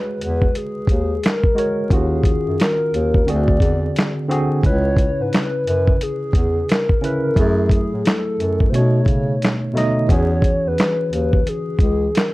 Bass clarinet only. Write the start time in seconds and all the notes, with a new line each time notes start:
0.21 E2
0.88 D#2
1.91 D#2
2.47 F#2
2.93 D#2
3.28 D2
3.61 E2
4.64 C#2
5.20 G#2
5.67 F#2
6.34 E2
7.37 F#2
7.93 A2
8.40 F#2
8.73 B2
9.06 C#3
10.09 E2
10.65 E2
11.12 D#2
11.79 C#2